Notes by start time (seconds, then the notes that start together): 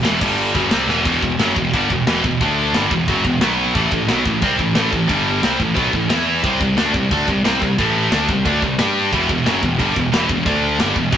0.03 E1 E2 B2 E3, snare, crash
0.21 G1 G2 D3 G3, kick, crash
0.38 crash
0.54 F#1 F#2 C#3 F#3, kick, crash
0.70 C2 C3 G3 C4, snare, crash
0.87 E1 E2 B2 E3, snare
1.05 E1 E2 B2 E3, kick, crash
1.22 E1 E2 B2, kick
1.38 F#1 F#2 C#3 F#3, snare, crash
1.56 E1 E2 B2, kick
1.73 G1 G2 D3 G3, kick, crash
1.90 E1 E2 B2, kick
2.06 E1 E2 B2 E3, snare, crash
2.24 E1 E2 B2, kick
2.41 D2 D3 A3 D4, kick, crash
2.73 G1 G2 D3 G3, snare, crash
2.91 E1 E2 B2, kick
3.08 F#1 F#2 C#3 F#3, kick, crash
3.24 E1 E2 B2, kick
3.40 B1 B2 F#3 B3, snare, crash
3.74 A1 A2 E3 A3, kick, crash
3.92 A1 A2 E3, kick
4.08 B1 B2 F#3 B3, snare, crash
4.25 A1 A2 E3, kick
4.42 C2 C3 G3 C4, kick, crash
4.59 A1 A2 E3, kick
4.74 A1 A2 E3 A3, snare, crash
4.92 A1 A2 E3, kick
5.08 G1 G2 D3 G3, kick, crash
5.42 C2 C3 G3 C4, snare, crash
5.59 A1 A2 E3, kick
5.75 B1 B2 F#3 B3, kick, crash
5.92 A1 A2 E3, kick
6.08 E2 E3 B3 E4, snare, crash
6.43 C2 C3 G3 C4, kick, crash
6.60 C2 C3 G3, kick
6.76 D2 D3 A3 D4, snare, crash
6.94 C2 C3 G3, kick
7.11 D2 D3 A3 D4, kick, crash
7.27 C2 C3 G3, kick
7.43 C2 C3 G3 C4, snare, crash
7.61 C2 C3 G3, kick
7.78 A1 A2 E3 A3, kick, crash
8.11 D2 D3 A3 D4, snare, crash
8.28 C2 C3 G3, kick
8.46 D2 D3 A3 D4, kick, crash
8.62 C2 C3 G3, kick
8.78 G2 G3 D4 G4, snare, crash
9.12 E1 E2 B2 E3, kick, crash
9.29 E1 E2 B2, kick
9.45 F#1 F#2 C#3 F#3, snare, crash
9.62 E1 E2 B2, kick
9.79 G1 G2 D3 G3, kick, crash
9.96 E1 E2 B2, kick
10.12 E1 E2 B2 E3, snare, crash
10.29 E1 E2 B2, kick
10.46 D2 D3 A3 D4, kick, crash
10.79 G1 G2 D3 G3, snare, crash
10.96 E1 E2 B2, kick
11.12 F#1 F#2 C#3 F#3, kick, crash